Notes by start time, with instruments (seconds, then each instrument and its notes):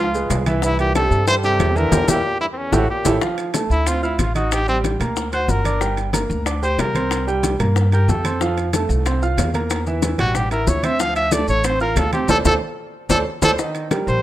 Already playing: upright bass C#2, trumpet F4
0.14 grand piano G#3 G#4 B4, high conga, maracas
0.30 upright bass C2, high bongo, low bongo, high conga, high timbale, low timbale, maracas
0.46 grand piano E3 E4 E5, high bongo, high conga, high timbale, maracas
0.62 trombone G2, grand piano E3 E4 E5, trumpet E4, high bongo, high conga, maracas
0.78 trombone A#2, trumpet G4, high bongo, high conga, high timbale, maracas
0.95 trombone C3, grand piano G3 G4 A4, trumpet A4, high bongo, high conga, high timbale, low timbale, maracas
1.10 upright bass G2, high bongo, maracas
1.27 trombone E3, grand piano G3 G4 A4, trumpet C5, high bongo, high conga, high timbale, maracas
1.43 trombone C3, grand piano G3 G4 A4, trumpet G4, high conga, maracas
1.59 upright bass E2, high bongo, low bongo, high conga, high timbale, low timbale, maracas
1.76 trombone D3, grand piano E3 E4 E5, trumpet A#4, high bongo, high conga, maracas
1.92 upright bass E2, grand piano E4 G4 A#4, low bongo, high conga, high timbale, maracas
2.08 upright bass E2, trombone A#2, grand piano E4 G4 A#4, trumpet G4, low bongo, high conga, high timbale, maracas
2.40 trombone G2, trumpet E4
2.53 trombone E2, trumpet C4
2.57 trombone E2, trumpet C#4
2.72 upright bass A1, trombone A2, grand piano E4 G4 A4, trumpet F#4, low bongo, high conga, high timbale, maracas
2.90 trombone A#2, trumpet G4
3.05 upright bass A1, grand piano E4 G4 A4, low bongo, high conga, high timbale, maracas
3.22 grand piano F3 F4 F5, high bongo, high conga, maracas
3.38 high bongo, high conga, high timbale, maracas
3.54 grand piano A3 A4 A5, high bongo, high conga, high timbale, maracas
3.70 upright bass D2, trumpet E4, high conga, maracas
3.86 grand piano C4 C5 C6, trumpet F4, high bongo, high conga, high timbale, maracas
4.03 trumpet E4, grand piano F4 F5 F6, high bongo, high conga, maracas
4.18 upright bass A1, trumpet F4, high bongo, low bongo, high conga, high timbale, maracas
4.35 grand piano D#4 D#5 D#6, trumpet F#4, high bongo, high conga, high timbale, maracas
4.52 trumpet G4, high bongo, high conga, high timbale, maracas
4.68 grand piano G3 G4 G5, trumpet C4, high bongo, high conga, maracas
4.84 high bongo, high conga, high timbale, maracas
5.00 upright bass D2, grand piano A#3 A#4 A#5, high conga, low conga, high timbale, maracas
5.16 high bongo, high conga, maracas
5.32 grand piano F#4 F#5 F#6, trumpet C5, high bongo, high conga, high timbale, maracas
5.48 upright bass G1, trumpet A#4, high bongo, low bongo, high conga, maracas
5.65 grand piano D4 D5 D6, high bongo, high conga, high timbale, maracas
5.81 grand piano G3 G4 G5, high bongo, high conga, maracas
5.97 high bongo, high conga, high timbale, maracas
6.13 grand piano A#3 A#4 A#5, high bongo, high conga, high timbale, maracas
6.30 upright bass D2, high conga, maracas
6.46 grand piano D4 D5 D6, high bongo, high conga, high timbale, maracas
6.62 grand piano G4 G5 G6, trumpet C5, high bongo, high conga, maracas
6.78 upright bass C2, trumpet A#4, high bongo, low bongo, high conga, high timbale, low timbale, maracas
6.95 grand piano C4 C5 C6, high bongo, high conga, high timbale, maracas
7.11 high bongo, high conga, high timbale, maracas
7.27 grand piano G3 G4 G5, high bongo, high conga, maracas
7.43 high bongo, high conga, high timbale, maracas
7.59 upright bass G2, grand piano A#3 A#4 A#5, high conga, low conga, high timbale, maracas
7.76 high bongo, high conga, maracas
7.92 grand piano G4 G5 G6, trumpet A#4, high bongo, high conga, high timbale, maracas
8.08 upright bass F2, trumpet A4, high bongo, low bongo, high conga, low timbale, maracas
8.24 grand piano C4 C5 C6, high bongo, high conga, high timbale, maracas
8.41 grand piano F3 F4 F5, high bongo, high conga, maracas
8.57 high bongo, high conga, high timbale, maracas
8.73 grand piano A3 A4 A5, high bongo, high conga, high timbale, maracas
8.89 upright bass C2, high conga, maracas
9.06 grand piano C4 C5 C6, high bongo, high conga, high timbale, maracas
9.22 grand piano F4 F5 F6, high bongo, high conga, maracas
9.37 upright bass E2, high bongo, low bongo, high conga, high timbale, low timbale, maracas
9.54 grand piano A#3 A#4 A#5, high bongo, high conga, high timbale, maracas
9.70 high bongo, high conga, high timbale, maracas
9.87 grand piano E3 E4 E5, high bongo, high conga, maracas
10.02 high bongo, high conga, high timbale, maracas
10.18 upright bass A1, grand piano G3 G4 G5, trumpet F#4, high conga, low conga, high timbale, maracas
10.35 trumpet G4, high bongo, high conga, low conga, maracas
10.51 grand piano E4 E5 E6, trumpet A#4, high bongo, high conga, high timbale, maracas
10.67 upright bass D2, trumpet C#5, high bongo, low bongo, high conga, maracas
10.83 grand piano C4 C5 C6, trumpet E5, high bongo, high conga, high timbale, maracas
10.99 grand piano F3 F4 F5, trumpet F5, high bongo, high conga, maracas
11.16 trumpet E5, high bongo, high conga, high timbale, maracas
11.32 grand piano A3 A4 A5, trumpet D5, high bongo, high conga, high timbale, maracas
11.48 upright bass A1, trumpet C#5, high conga, maracas
11.64 grand piano C4 C5 C6, trumpet C5, high bongo, high conga, high timbale, maracas
11.80 grand piano F4 F5 F6, trumpet A#4, high bongo, high conga, maracas
11.96 upright bass D2, trumpet A4, high bongo, low bongo, high conga, high timbale, low timbale, maracas
12.13 grand piano C4 C5 C6, trumpet G4, high bongo, high conga, high timbale, maracas
12.28 upright bass D2, grand piano A4 C5 D5, trumpet A4, low bongo, high conga, high timbale, maracas
12.45 upright bass D2, grand piano A4 C5 D5, trumpet A4, low bongo, high conga, high timbale, maracas
13.09 upright bass D2, grand piano A4 C5 D5, trumpet A4, low bongo, high conga, high timbale, maracas
13.42 upright bass D2, grand piano A4 C5 D5, trumpet A4, low bongo, high conga, high timbale, maracas
13.59 grand piano D#3 D#4 D#5, high bongo, high conga, maracas
13.75 high bongo, high conga, high timbale, maracas
13.91 grand piano G3 G4 A#4, high bongo, high conga, high timbale, maracas
14.07 upright bass A#1, trumpet C5, high conga, maracas